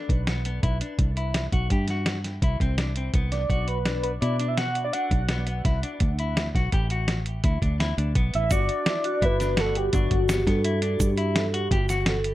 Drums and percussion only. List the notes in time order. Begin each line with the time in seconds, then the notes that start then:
0.09 kick, closed hi-hat
0.27 snare, closed hi-hat
0.45 closed hi-hat
0.63 kick, closed hi-hat
0.81 closed hi-hat
0.99 kick, closed hi-hat
1.17 closed hi-hat
1.34 snare, closed hi-hat
1.52 kick, closed hi-hat
1.70 kick, closed hi-hat
1.88 snare, closed hi-hat
2.06 snare, closed hi-hat
2.24 snare, closed hi-hat
2.42 kick, closed hi-hat
2.60 kick, closed hi-hat
2.78 snare, closed hi-hat
2.96 closed hi-hat
3.14 kick, closed hi-hat
3.32 snare, closed hi-hat
3.50 kick, closed hi-hat
3.68 closed hi-hat
3.85 snare, closed hi-hat
4.04 closed hi-hat
4.22 closed hi-hat
4.40 closed hi-hat
4.58 snare, closed hi-hat
4.75 closed hi-hat
4.93 closed hi-hat
5.11 kick, closed hi-hat
5.29 snare, closed hi-hat
5.47 closed hi-hat
5.65 kick, snare, closed hi-hat
5.83 closed hi-hat
6.00 kick, closed hi-hat
6.19 closed hi-hat
6.37 snare, closed hi-hat
6.55 kick, snare, closed hi-hat
6.72 kick, closed hi-hat
6.90 closed hi-hat
7.08 snare, closed hi-hat
7.26 closed hi-hat
7.44 kick, closed hi-hat
7.62 kick, closed hi-hat
7.80 snare, closed hi-hat
7.98 closed hi-hat
8.15 kick, closed hi-hat
8.34 closed hi-hat
8.51 kick, closed hi-hat, shaker
8.69 closed hi-hat
8.86 snare, closed hi-hat
9.04 closed hi-hat
9.22 kick, closed hi-hat
9.40 snare, closed hi-hat, shaker
9.57 snare, closed hi-hat
9.75 closed hi-hat
9.93 kick, closed hi-hat, shaker
10.11 kick, closed hi-hat
10.29 snare, closed hi-hat, shaker
10.47 kick, snare, closed hi-hat
10.64 closed hi-hat
10.82 closed hi-hat
11.00 kick, closed hi-hat, shaker
11.17 closed hi-hat
11.36 snare, closed hi-hat
11.54 closed hi-hat
11.71 kick, closed hi-hat
11.89 snare, closed hi-hat, shaker
12.06 snare, closed hi-hat
12.24 closed hi-hat